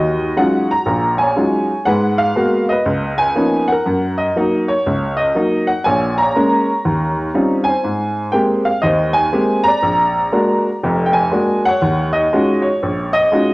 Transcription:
0.00 0.30 D#2 medium
0.00 0.83 F#4 soft
0.00 0.38 D#5 medium
0.37 0.71 F#3 medium
0.37 0.71 G#3 soft
0.37 0.71 C#4 soft
0.37 0.71 D#4 soft
0.37 0.71 F4 medium
0.37 0.71 F#5 medium
0.71 1.21 A#5 medium
0.86 1.29 A#1 medium
0.86 1.29 A#2 medium
1.18 1.82 C#5 medium
1.18 1.87 G#5 medium
1.36 1.71 F#3 soft
1.36 1.71 G#3 soft
1.36 1.71 C#4 soft
1.36 1.71 D#4 soft
1.36 1.71 F4 medium
1.85 2.29 G#2 medium
1.85 2.29 G#3 medium
1.85 2.71 B4 medium
1.85 2.19 F#5 medium
2.18 2.69 F5 medium
2.36 2.70 G#3 soft
2.36 2.70 A#3 soft
2.36 2.70 B3 medium
2.36 2.71 F#4 medium
2.69 3.66 B4 medium
2.69 3.15 D#5 medium
2.86 3.28 C#2 medium
3.18 3.69 G#5 medium
3.35 3.70 F3 medium
3.35 3.70 A#3 soft
3.35 3.70 B3 soft
3.35 3.70 C#4 soft
3.35 3.70 D#4 medium
3.67 4.19 F#5 medium
3.72 4.66 A#4 medium
3.86 4.28 F#2 medium
4.18 4.69 D#5 medium
4.36 4.70 F#3 medium
4.36 4.70 A#3 soft
4.36 4.71 D#4 medium
4.68 5.19 C#5 medium
4.86 5.29 C#2 medium
5.17 5.68 D#5 medium
5.35 5.69 F#3 soft
5.35 5.70 A#3 soft
5.35 5.70 D#4 medium
5.67 5.84 F#5 medium
5.84 6.28 A#1 medium
5.84 6.28 A#2 medium
5.84 6.18 G#5 medium
5.89 6.21 C#5 medium
6.18 7.72 A#5 medium
6.22 7.65 C#5 medium
6.36 6.70 G#3 medium
6.36 6.70 A#3 soft
6.36 6.70 C#4 medium
6.85 7.28 D#2 medium
7.34 7.69 G3 soft
7.34 7.69 C4 soft
7.34 7.69 C#4 soft
7.34 7.69 D#4 soft
7.34 7.69 F4 medium
7.64 8.28 G#5 medium
7.68 8.63 C5 medium
7.84 8.27 G#2 medium
8.32 8.68 G#3 medium
8.32 8.68 A#3 soft
8.32 8.68 C4 soft
8.32 8.69 G4 medium
8.32 8.39 G5 medium
8.65 8.83 F5 medium
8.82 9.26 D#2 medium
8.82 9.17 D#5 medium
8.86 9.80 C5 medium
9.13 9.66 G#5 medium
9.33 9.68 G#3 medium
9.33 9.68 A#3 soft
9.33 9.68 C4 soft
9.33 9.68 G4 medium
9.64 11.01 A#5 loud
9.68 11.03 D5 medium
9.83 10.26 A#1 medium
10.32 10.67 G#3 medium
10.32 10.67 A#3 medium
10.32 10.67 D4 soft
10.32 10.68 F#4 medium
10.83 11.26 F1 medium
10.83 11.26 F2 medium
11.06 11.15 G5 medium
11.13 11.66 G#5 medium
11.31 11.67 G#3 medium
11.31 11.67 A#3 soft
11.31 11.67 D4 soft
11.31 11.67 F#4 medium
11.65 12.61 C#5 medium
11.65 12.11 F#5 medium
11.82 12.25 D#2 medium
12.13 12.65 D#5 medium
12.33 12.67 G#3 medium
12.33 12.67 C#4 soft
12.33 12.67 D#4 soft
12.33 12.67 F4 soft
12.33 12.67 F#4 medium
12.62 13.15 C#5 medium
12.83 13.25 A#1 medium
13.13 13.54 D#5 medium
13.32 13.54 G#3 medium
13.32 13.54 C#4 soft
13.32 13.54 D#4 soft
13.32 13.54 F4 soft
13.32 13.54 F#4 medium

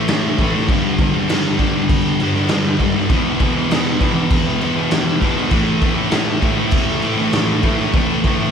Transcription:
0.08 0.39 A2 medium
0.08 0.40 E3 loud
0.08 0.41 A3 medium
0.08 snare loud
0.08 crash medium
0.38 0.67 A2 medium
0.38 0.56 E3 medium
0.38 kick medium
0.38 crash medium
0.43 0.54 A3 medium
0.55 0.69 E3 medium
0.55 0.67 A3 medium
0.55 snare soft
0.69 0.99 G2 medium
0.69 1.00 D3 loud
0.69 1.02 G3 loud
0.69 kick loud
0.69 crash medium
0.99 1.28 G2 medium
0.99 1.16 D3 medium
0.99 kick loud
0.99 crash medium
1.03 1.13 G3 medium
1.15 1.30 D3 medium
1.15 1.31 G3 medium
1.29 1.58 G2 medium
1.29 1.60 D3 loud
1.29 1.61 G3 loud
1.29 snare loud
1.29 crash loud
1.59 2.04 G2 medium
1.59 1.76 D3 medium
1.59 1.73 G3 medium
1.59 kick medium
1.59 crash medium
1.74 2.20 D3 medium
1.74 2.22 G3 medium
1.89 kick loud
1.89 crash medium
2.20 2.50 G2 medium
2.20 2.37 D3 medium
2.20 2.35 G3 medium
2.20 crash medium
2.35 2.52 D3 medium
2.35 2.53 G3 medium
2.35 snare soft
2.49 2.78 G2 medium
2.49 snare loud
2.49 crash loud
2.53 2.80 D3 medium
2.53 2.81 G3 loud
2.79 3.08 G2 medium
2.79 2.98 D3 medium
2.79 2.95 G3 loud
2.79 kick medium
2.79 crash medium
2.96 3.10 D3 medium
2.96 3.09 G3 medium
2.96 snare soft
3.10 3.39 E2 medium
3.10 3.41 B2 loud
3.10 3.42 E3 loud
3.10 kick loud
3.10 crash medium
3.40 3.68 E2 medium
3.40 3.57 B2 medium
3.40 3.55 E3 medium
3.40 kick loud
3.40 crash medium
3.55 3.70 B2 medium
3.55 3.72 E3 medium
3.69 3.99 E2 loud
3.69 4.00 B2 loud
3.69 4.02 E3 medium
3.69 snare loud
3.69 crash medium
4.00 4.46 E2 medium
4.00 4.16 B2 medium
4.00 4.13 E3 medium
4.00 kick loud
4.00 crash medium
4.14 4.62 B2 medium
4.14 4.64 E3 medium
4.31 kick loud
4.31 crash loud
4.61 4.90 E2 medium
4.61 4.78 B2 medium
4.61 4.76 E3 medium
4.61 crash medium
4.76 4.92 B2 medium
4.76 4.94 E3 medium
4.91 5.20 E2 loud
4.91 5.22 B2 medium
4.91 5.24 E3 medium
4.91 snare loud
4.91 crash loud
5.21 5.50 E2 medium
5.21 5.38 B2 medium
5.21 5.36 E3 medium
5.21 kick medium
5.21 crash medium
5.36 5.50 B2 medium
5.36 5.51 E3 medium
5.36 snare soft
5.50 5.82 A2 medium
5.50 5.83 E3 medium
5.50 5.84 A3 medium
5.50 kick loud
5.50 crash medium
5.82 6.11 A2 medium
5.82 5.98 E3 medium
5.82 5.95 A3 medium
5.82 kick loud
5.82 crash medium
5.95 6.12 E3 medium
5.95 6.13 A3 medium
6.11 6.42 A2 loud
6.11 6.43 E3 loud
6.11 6.44 A3 loud
6.11 snare loud
6.11 crash medium
6.42 6.88 A2 medium
6.42 6.59 E3 medium
6.42 6.56 A3 medium
6.42 kick medium
6.42 crash medium
6.58 7.02 E3 medium
6.58 7.04 A3 medium
6.71 kick loud
6.71 crash medium
7.02 7.32 A2 medium
7.02 7.19 E3 medium
7.02 7.16 A3 medium
7.02 crash medium
7.17 7.34 E3 medium
7.17 7.35 A3 medium
7.17 snare soft
7.33 7.62 A2 medium
7.33 7.63 E3 medium
7.33 7.65 A3 loud
7.33 snare loud
7.33 crash medium
7.63 7.92 A2 medium
7.63 7.80 E3 medium
7.63 7.77 A3 loud
7.63 kick medium
7.63 crash medium
7.79 7.94 E3 medium
7.79 7.95 A3 medium
7.79 snare soft
7.93 8.24 A2 medium
7.93 8.25 E3 loud
7.93 8.26 A3 loud
7.93 kick loud
7.93 crash medium
8.24 8.51 A2 medium
8.24 8.42 E3 medium
8.24 8.39 A3 medium
8.24 kick medium
8.24 crash medium
8.40 8.51 E3 medium
8.40 8.51 A3 medium

